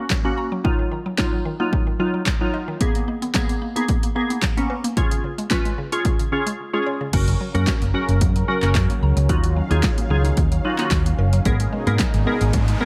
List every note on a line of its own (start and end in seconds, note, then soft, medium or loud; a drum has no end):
0.10 kick loud
0.10 snare medium
0.10 clap loud
0.24 0.45 A#3 medium
0.24 0.32 A#3 medium
0.24 0.46 C#4 medium
0.24 0.46 F#4 medium
0.38 0.46 A#5 medium
0.52 0.59 F#3 medium
0.64 0.73 D#3 medium
0.64 0.93 F#3 medium
0.64 0.93 D#4 medium
0.64 0.93 F4 loud
0.64 kick loud
0.79 0.86 D#3 medium
0.92 1.00 D#3 medium
1.06 1.13 F#3 medium
1.18 1.40 F#3 medium
1.18 1.40 D#4 medium
1.18 1.27 D#4 medium
1.18 1.40 F4 loud
1.18 kick loud
1.18 snare medium
1.18 clap loud
1.33 1.40 F#3 medium
1.45 1.54 D#3 medium
1.60 1.81 F#3 medium
1.60 1.67 A#3 medium
1.60 1.81 D#4 medium
1.60 1.81 F4 medium
1.73 1.81 D#3 medium
1.73 kick loud
1.87 1.94 D#3 medium
1.99 2.08 D#3 medium
1.99 2.21 F#3 medium
1.99 2.21 D#4 medium
1.99 2.21 F4 loud
2.14 2.21 F#3 medium
2.26 kick loud
2.26 snare medium
2.26 clap loud
2.41 2.48 F#3 medium
2.41 2.62 F#3 medium
2.41 2.62 D#4 medium
2.41 2.62 F4 medium
2.54 2.62 D#5 medium
2.68 2.75 D#3 medium
2.81 2.89 A#3 medium
2.81 3.09 A#3 medium
2.81 3.09 B3 medium
2.81 3.09 G#4 medium
2.81 kick loud
2.81 closed hi-hat medium
2.95 3.03 A#3 medium
2.95 closed hi-hat medium
3.08 3.16 A#3 medium
3.22 3.30 B3 medium
3.22 closed hi-hat soft
3.34 3.56 A#3 medium
3.34 3.56 B3 medium
3.34 3.43 G#4 medium
3.34 3.57 G#4 medium
3.34 kick loud
3.34 snare medium
3.34 clap loud
3.34 closed hi-hat medium
3.49 3.57 B3 medium
3.49 closed hi-hat medium
3.62 3.70 A#3 medium
3.76 3.97 A#3 medium
3.76 3.97 B3 medium
3.76 3.84 D#4 medium
3.76 3.97 G#4 medium
3.76 closed hi-hat medium
3.88 3.97 A#3 medium
3.88 kick loud
3.88 closed hi-hat medium
4.03 4.11 A#3 medium
4.03 closed hi-hat medium
4.15 4.37 A#3 medium
4.15 4.24 A#3 medium
4.15 4.37 B3 medium
4.15 4.37 G#4 medium
4.30 4.38 B3 medium
4.30 closed hi-hat medium
4.42 kick loud
4.42 snare medium
4.42 clap loud
4.42 closed hi-hat medium
4.57 4.78 A#3 medium
4.57 4.78 B3 medium
4.57 4.65 B3 medium
4.57 4.78 C#4 medium
4.57 closed hi-hat medium
4.70 4.78 B4 medium
4.84 4.92 A#3 medium
4.84 closed hi-hat medium
4.97 5.05 C#3 medium
4.97 5.25 C#4 medium
4.97 5.25 F4 medium
4.97 5.25 G#4 loud
4.97 kick loud
4.97 closed hi-hat medium
5.11 5.19 C#3 medium
5.11 closed hi-hat medium
5.24 5.32 C#3 medium
5.38 5.46 G#3 medium
5.38 closed hi-hat soft
5.50 5.72 C#4 medium
5.50 5.59 F4 medium
5.50 5.73 F4 medium
5.50 5.73 B4 medium
5.50 kick loud
5.50 snare medium
5.50 clap loud
5.50 closed hi-hat medium
5.65 5.73 G#3 medium
5.65 closed hi-hat soft
5.78 5.86 C#3 medium
5.92 6.00 C#4 medium
5.92 6.13 C#4 medium
5.92 6.13 F4 medium
5.92 6.13 G#4 medium
5.92 closed hi-hat medium
6.05 6.13 C#3 medium
6.05 kick loud
6.05 closed hi-hat medium
6.19 6.27 C#3 medium
6.19 closed hi-hat soft
6.32 6.41 C#3 medium
6.32 6.54 C#4 medium
6.32 6.54 F4 medium
6.32 6.54 G#4 medium
6.47 6.54 G#3 medium
6.47 closed hi-hat medium
6.73 6.81 G#3 medium
6.73 6.94 C#4 medium
6.73 6.94 F4 medium
6.73 6.95 G#4 loud
6.86 6.95 C#5 medium
7.01 7.08 C#3 medium
7.13 7.33 F#1 loud
7.13 9.27 C#3 medium
7.13 11.42 F#3 medium
7.13 7.22 F#3 medium
7.13 12.85 C#4 medium
7.13 7.35 C#4 medium
7.13 7.35 F#4 medium
7.13 9.27 A#4 medium
7.13 7.35 A#4 medium
7.13 kick loud
7.13 closed hi-hat medium
7.13 crash medium
7.28 7.35 F#3 medium
7.28 closed hi-hat medium
7.41 7.49 F#3 medium
7.54 7.64 F#2 medium
7.54 7.62 A#3 medium
7.54 7.75 C#4 medium
7.54 7.75 F#4 medium
7.54 7.76 A#4 medium
7.54 closed hi-hat soft
7.67 7.76 F#4 medium
7.67 kick loud
7.67 snare medium
7.67 clap loud
7.67 closed hi-hat medium
7.82 7.91 F#1 medium
7.82 7.89 A#3 medium
7.82 closed hi-hat medium
7.94 8.03 F#3 medium
7.94 8.22 C#4 medium
7.94 8.22 F#4 medium
7.94 8.23 A#4 medium
8.09 8.23 F#1 medium
8.09 8.16 C#4 medium
8.09 closed hi-hat medium
8.21 8.41 F#2 loud
8.21 8.30 F#3 medium
8.21 kick loud
8.21 closed hi-hat medium
8.36 8.43 F#3 medium
8.36 closed hi-hat medium
8.48 8.57 F#3 medium
8.48 8.56 C#4 medium
8.48 8.56 F#4 medium
8.48 8.56 A#4 loud
8.62 8.72 F#1 medium
8.62 8.70 A#3 medium
8.62 8.97 C#4 medium
8.62 8.98 F#4 medium
8.62 8.98 A#4 loud
8.62 clap medium
8.62 closed hi-hat medium
8.75 8.86 F#2 loud
8.75 kick loud
8.75 snare medium
8.75 clap loud
8.75 closed hi-hat medium
8.90 8.97 A#3 medium
8.90 closed hi-hat medium
9.02 9.13 C#2 medium
9.02 9.11 A#5 medium
9.17 9.26 C#2 medium
9.17 9.24 F#3 medium
9.17 closed hi-hat medium
9.29 11.44 D#3 medium
9.29 9.38 F#3 medium
9.29 9.51 D#4 medium
9.29 9.51 F4 medium
9.29 9.51 F#4 medium
9.29 11.44 F5 medium
9.29 kick loud
9.29 closed hi-hat medium
9.44 9.51 F#3 medium
9.44 closed hi-hat medium
9.56 9.65 F#3 medium
9.71 9.80 D#2 medium
9.71 9.78 A#3 medium
9.71 9.92 D#4 medium
9.71 9.92 F4 medium
9.71 9.92 G#4 medium
9.71 closed hi-hat soft
9.83 9.92 F4 medium
9.83 kick loud
9.83 snare loud
9.83 clap loud
9.83 closed hi-hat medium
9.98 10.05 A#3 medium
9.98 closed hi-hat medium
10.10 10.30 C#2 medium
10.10 10.19 F#3 medium
10.10 10.39 D#4 medium
10.10 10.39 F4 medium
10.10 10.39 G#4 medium
10.25 10.32 D#4 medium
10.25 closed hi-hat medium
10.37 10.58 D#2 medium
10.37 10.46 F#3 medium
10.37 kick loud
10.37 closed hi-hat medium
10.52 10.59 F#3 medium
10.52 closed hi-hat medium
10.65 10.73 F#3 medium
10.65 10.72 D#4 medium
10.65 10.72 F4 medium
10.65 10.72 F#4 medium
10.78 10.86 A#3 medium
10.78 11.14 D#4 medium
10.78 11.14 F4 medium
10.78 11.14 F#4 loud
10.78 clap medium
10.78 closed hi-hat medium
10.91 11.12 D#2 medium
10.91 kick loud
10.91 snare medium
10.91 clap loud
10.91 closed hi-hat medium
11.06 11.13 A#3 medium
11.06 closed hi-hat medium
11.18 11.39 F#1 medium
11.18 11.27 A#4 medium
11.33 11.40 F#3 medium
11.33 closed hi-hat medium
11.45 11.66 G#1 medium
11.45 12.85 B2 medium
11.45 12.85 G#3 medium
11.45 11.54 G#3 medium
11.45 11.67 B3 medium
11.45 12.85 D#4 medium
11.45 12.85 G#4 medium
11.45 11.67 G#4 medium
11.45 11.67 A#4 loud
11.45 kick loud
11.45 closed hi-hat medium
11.45 riser medium
11.60 11.67 G#3 medium
11.60 closed hi-hat medium
11.73 11.81 G#3 medium
11.87 11.97 G#2 loud
11.87 11.94 A#3 medium
11.87 12.08 B3 medium
11.87 12.08 G#4 medium
11.87 12.08 A#4 loud
11.87 closed hi-hat soft
11.99 12.08 D#4 medium
11.99 kick loud
11.99 snare loud
11.99 clap loud
11.99 closed hi-hat medium
12.14 12.24 G#1 medium
12.14 12.21 A#3 medium
12.14 closed hi-hat medium
12.27 12.35 G#3 medium
12.27 12.55 B3 medium
12.27 12.55 G#4 medium
12.27 12.55 A#4 loud
12.41 12.51 G#1 medium
12.41 12.49 B3 medium
12.41 closed hi-hat medium
12.53 12.74 G#2 medium
12.53 12.62 G#3 medium
12.53 kick loud
12.53 closed hi-hat medium
12.68 12.76 G#3 medium
12.68 closed hi-hat medium
12.80 12.85 G#3 medium
12.80 12.85 B3 medium
12.80 12.85 G#4 medium
12.80 12.85 A#4 medium